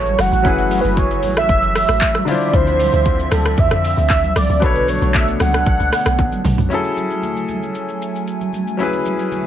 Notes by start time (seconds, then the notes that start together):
Already playing: A1 E3 F#3 A3 C#4 E4 F#4 G#4 A4 C#5
0.06 high conga, shaker
0.18 F#1 F#5, cross-stick, open hi-hat, high conga, shaker
0.32 A1, shaker
0.42 F#1 F#3 C#4 E4, kick, low conga, shaker
0.47 G#4 B4
0.58 shaker
0.71 open hi-hat, high conga, shaker
0.81 F#1 B4, shaker
0.97 C#5, kick, low conga, shaker
1.11 shaker
1.23 A1, open hi-hat, high conga, low conga, shaker
1.37 E5, cross-stick, shaker
1.49 F#1, kick, shaker
1.63 shaker
1.75 cross-stick, open hi-hat, shaker
1.89 A1, cross-stick, shaker
2.01 kick, clap, shaker
2.15 cross-stick, high conga, shaker
2.25 D3 F3 C4 D4 E4 E5, open hi-hat, high conga, shaker
2.29 F4 C5 D5
2.42 shaker
2.53 D2 C5, kick, low conga, shaker
2.67 shaker
2.79 open hi-hat, high conga, shaker
2.93 D2, shaker
3.05 kick, low conga, shaker
3.19 shaker
3.31 D2 A4, cross-stick, open hi-hat, high conga, low conga, shaker
3.45 cross-stick, shaker
3.57 E2 E5, kick, shaker
3.71 F2, cross-stick, shaker
3.84 open hi-hat, shaker
3.97 D2, shaker
4.10 D2 E5, kick, clap, shaker
4.23 high conga, shaker
4.35 C#2 D5, cross-stick, open hi-hat, high conga, shaker
4.50 D2, shaker
4.60 B1 B2 D3 A3 B3 D4 B4, kick, low conga, shaker
4.64 A4 C#5
4.76 shaker
4.88 C#5, open hi-hat, high conga, shaker
5.02 B1, shaker
5.14 E5, kick, clap, low conga, shaker
5.28 shaker
5.40 C#2 F#5, cross-stick, open hi-hat, high conga, low conga, shaker
5.54 cross-stick, shaker
5.66 B1, kick, shaker
5.80 C#2, shaker
5.93 cross-stick, open hi-hat, shaker
6.06 B1, cross-stick, shaker
6.19 A1, kick, high tom, shaker
6.32 high conga, shaker
6.44 B1, mid tom, open hi-hat, high conga, shaker
6.58 B1, floor tom, shaker
6.69 F#3 A3 C#4 E4 E5 G#5, low conga, shaker
6.73 G#4 A4
6.84 shaker
6.97 high conga, shaker
7.10 shaker
7.23 low conga, shaker
7.37 shaker
7.48 high conga, low conga, shaker
7.63 shaker
7.75 shaker
7.89 shaker
8.02 shaker
8.16 shaker
8.27 shaker
8.41 high conga, shaker
8.53 high conga, shaker
8.68 shaker
8.77 F#3 C#4 E4, low conga, shaker
8.82 G#4 B4
8.93 shaker
9.06 high conga, shaker
9.19 shaker
9.31 low conga, shaker